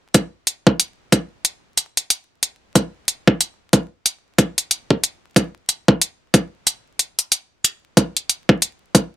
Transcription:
0.14 kick loud
0.14 closed hi-hat medium
0.47 closed hi-hat medium
0.67 kick medium
0.80 closed hi-hat medium
1.12 kick loud
1.12 closed hi-hat medium
1.45 closed hi-hat medium
1.77 closed hi-hat medium
1.97 closed hi-hat medium
2.10 closed hi-hat medium
2.43 closed hi-hat medium
2.75 kick loud
2.75 closed hi-hat medium
3.08 closed hi-hat medium
3.28 kick loud
3.41 closed hi-hat medium
3.73 kick loud
3.73 closed hi-hat medium
4.06 closed hi-hat medium
4.38 kick loud
4.38 closed hi-hat medium
4.58 closed hi-hat medium
4.71 closed hi-hat medium
4.90 kick medium
5.04 closed hi-hat medium
5.36 kick loud
5.36 closed hi-hat medium
5.69 closed hi-hat medium
5.88 kick loud
6.01 closed hi-hat medium
6.34 kick loud
6.34 closed hi-hat medium
6.67 closed hi-hat medium
6.99 closed hi-hat medium
7.19 closed hi-hat medium
7.32 closed hi-hat medium
7.64 closed hi-hat medium
7.97 kick loud
7.97 closed hi-hat medium
8.17 closed hi-hat soft
8.29 closed hi-hat medium
8.49 kick medium
8.62 closed hi-hat medium
8.95 kick loud
8.95 closed hi-hat medium

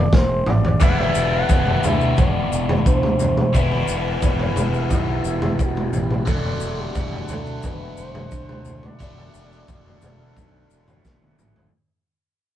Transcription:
0.00 0.15 D5 medium
0.13 0.40 E1 medium
0.13 0.50 C5 loud
0.13 kick loud
0.13 snare medium
0.46 0.75 A1 medium
0.46 0.82 D5 medium
0.46 mid tom medium
0.65 floor tom medium
0.80 1.09 E1 medium
0.80 3.53 E3 medium
0.80 6.23 G3 medium
0.80 3.53 G3 medium
0.80 3.53 B3 medium
0.80 11.69 E4 medium
0.80 3.56 E4 loud
0.80 0.90 E5 loud
0.80 kick loud
0.80 floor tom medium
0.80 maracas medium
0.88 0.99 F#5 medium
0.97 1.33 E5 loud
0.97 floor tom medium
1.15 1.43 E1 medium
1.15 maracas loud
1.33 1.86 F#5 loud
1.49 1.77 E1 medium
1.49 kick loud
1.49 floor tom medium
1.49 maracas medium
1.67 floor tom medium
1.84 2.12 D2 medium
1.84 2.18 E5 loud
1.84 floor tom medium
1.84 mid tom medium
1.84 maracas medium
2.01 maracas soft
2.17 2.46 E1 medium
2.17 2.83 D5 loud
2.17 kick loud
2.17 floor tom medium
2.17 maracas medium
2.51 2.79 E1 medium
2.51 maracas loud
2.69 floor tom medium
2.69 mid tom medium
2.86 3.41 D2 medium
2.86 3.58 C5 loud
2.86 kick loud
2.86 maracas medium
3.03 mid tom medium
3.19 floor tom medium
3.19 maracas medium
3.37 mid tom medium
3.53 3.82 E1 medium
3.53 6.25 E3 medium
3.53 6.25 G3 medium
3.53 6.26 B3 loud
3.53 6.29 E4 loud
3.53 4.23 B4 loud
3.53 kick loud
3.53 floor tom medium
3.53 maracas medium
3.72 floor tom medium
3.88 4.16 E1 medium
3.88 maracas loud
4.22 4.50 E1 medium
4.22 4.87 B4 medium
4.22 kick loud
4.22 floor tom medium
4.22 maracas medium
4.39 floor tom medium
4.56 4.84 E1 medium
4.56 floor tom medium
4.56 mid tom medium
4.56 maracas medium
4.74 maracas soft
4.90 5.19 B1 medium
4.90 5.62 E5 loud
4.90 kick loud
4.90 floor tom medium
4.90 maracas medium
5.24 5.52 E1 medium
5.24 maracas medium
5.42 floor tom medium
5.42 mid tom medium
5.59 5.87 E1 medium
5.59 5.95 F#4 medium
5.59 kick loud
5.59 maracas medium
5.77 mid tom medium
5.93 6.21 A1 medium
5.93 6.28 G4 medium
5.93 floor tom medium
5.93 maracas medium
6.11 mid tom medium
6.26 6.55 E1 medium
6.26 8.97 D3 medium
6.26 8.99 F#3 medium
6.26 9.01 A3 loud
6.26 11.68 D4 medium
6.26 9.02 D4 loud
6.26 6.81 A4 loud
6.26 11.68 F#5 medium
6.26 kick loud
6.26 floor tom medium
6.26 maracas medium
6.45 floor tom medium
6.60 6.88 E1 medium
6.60 maracas medium
6.79 7.33 G4 medium
6.95 7.23 E1 medium
6.95 kick loud
6.95 floor tom medium
6.95 maracas medium
7.13 floor tom medium
7.28 7.57 D2 medium
7.28 7.66 A4 medium
7.28 floor tom medium
7.28 mid tom medium
7.28 maracas medium
7.46 maracas soft
7.63 7.92 E1 medium
7.63 7.97 B4 medium
7.63 kick loud
7.63 floor tom medium
7.63 maracas medium
7.97 8.25 E1 medium
7.97 8.85 C5 loud
7.97 maracas medium
8.15 floor tom medium
8.15 mid tom medium
8.31 8.87 D2 medium
8.31 kick loud
8.31 maracas medium
8.49 mid tom medium
8.65 floor tom medium
8.65 maracas medium
8.83 11.05 D5 loud
8.83 mid tom medium
8.99 9.28 E1 medium
8.99 11.70 D3 medium
8.99 11.70 F#3 loud
8.99 11.71 A3 loud
8.99 11.72 D4 loud
8.99 kick loud
8.99 floor tom medium
8.99 maracas medium
9.18 floor tom medium
9.34 9.62 E1 medium
9.34 maracas loud
9.52 maracas soft
9.68 9.96 E1 medium
9.68 kick loud
9.68 floor tom medium
9.68 maracas medium
9.86 floor tom medium
10.02 10.30 E1 medium
10.02 floor tom medium
10.02 mid tom medium
10.02 maracas medium
10.36 10.64 B1 medium
10.36 kick loud
10.36 floor tom medium
10.36 maracas medium
10.71 10.99 E1 medium
10.71 maracas medium
10.88 floor tom medium
10.88 maracas soft
11.05 11.32 E1 medium
11.05 kick loud
11.05 snare medium
11.05 maracas medium
11.22 high tom medium
11.39 11.67 A1 medium
11.39 mid tom medium
11.39 maracas medium
11.56 floor tom medium

